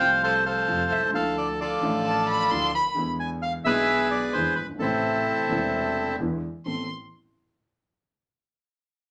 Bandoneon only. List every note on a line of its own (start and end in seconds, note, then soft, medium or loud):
0.00 0.22 C5 medium
0.00 0.22 F5 medium
0.00 0.10 G5 medium
0.23 0.44 A4 medium
0.23 0.45 C5 medium
0.23 0.34 F5 medium
0.46 1.10 A4 medium
0.46 1.11 C5 medium
0.46 0.93 F5 medium
0.91 1.02 E5 medium
1.15 1.60 A4 medium
1.15 1.36 F5 medium
1.38 1.48 D5 medium
1.61 2.71 F4 medium
1.61 2.71 A4 medium
1.61 2.71 D5 medium
3.20 3.30 G#5 medium
3.42 3.53 F5 medium
3.65 4.54 G#4 medium
3.65 4.54 B4 medium
3.65 4.08 E5 loud
4.11 4.33 D5 medium
4.33 4.56 C5 medium
4.56 4.67 B4 medium
4.79 6.16 C4 soft
4.79 6.16 E4 medium
4.79 6.15 A4 medium